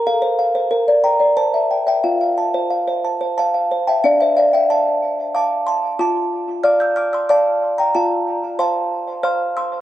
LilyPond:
\new Staff \with { instrumentName = "Music box" } { \time 3/4 \key f \major \tempo 4 = 92 << { f''4. bes''8 a''8. g''16 | f''2 <f'' a''>8. <e'' g''>16 | \key d \minor <d'' f''>16 <c'' e''>16 <d'' f''>16 <e'' g''>16 <f'' a''>4 <a'' d'''>8 <a'' c'''>8 | <a'' d'''>4 <d''' f'''>16 <e''' g'''>16 <d''' f'''>16 <c''' e'''>16 <a'' d'''>8. <g'' bes''>16 |
<f'' a''>4 <a'' c'''>4 <c''' f'''>8 <c''' e'''>8 | } \\ { a'16 c''16 f''16 c''16 bes'16 d''16 g''16 d''16 c''16 e''16 g''16 e''16 | f'16 f''16 a''16 c''16 f''16 c''16 a''16 c''8 f''16 c''16 a''16 | d'4 r4 f''4 | f'4 <d'' f''>4 <d'' f''>4 |
f'4 <c'' f''>4 <c'' f''>4 | } >> }